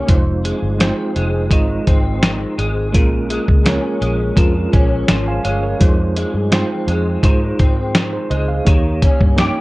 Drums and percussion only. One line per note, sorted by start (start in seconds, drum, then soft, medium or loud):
0.08 kick medium
0.08 closed hi-hat medium
0.45 closed hi-hat medium
0.80 snare medium
0.80 closed hi-hat medium
1.16 closed hi-hat medium
1.51 kick medium
1.51 closed hi-hat medium
1.87 kick medium
1.87 closed hi-hat medium
2.23 snare loud
2.23 closed hi-hat medium
2.59 closed hi-hat medium
2.94 kick loud
2.94 closed hi-hat medium
3.30 closed hi-hat medium
3.48 kick medium
3.66 snare medium
3.66 closed hi-hat medium
4.02 closed hi-hat medium
4.37 kick medium
4.37 closed hi-hat medium
4.73 kick medium
4.73 closed hi-hat medium
5.08 snare loud
5.08 closed hi-hat medium
5.45 closed hi-hat medium
5.81 kick medium
5.81 closed hi-hat medium
6.16 closed hi-hat medium
6.52 snare loud
6.52 closed hi-hat medium
6.88 closed hi-hat medium
7.23 kick medium
7.23 closed hi-hat medium
7.59 kick medium
7.59 closed hi-hat medium
7.95 snare loud
7.95 closed hi-hat medium
8.31 closed hi-hat medium
8.67 kick medium
8.67 closed hi-hat medium
9.02 kick medium
9.02 closed hi-hat medium
9.21 kick medium
9.38 snare medium
9.38 closed hi-hat medium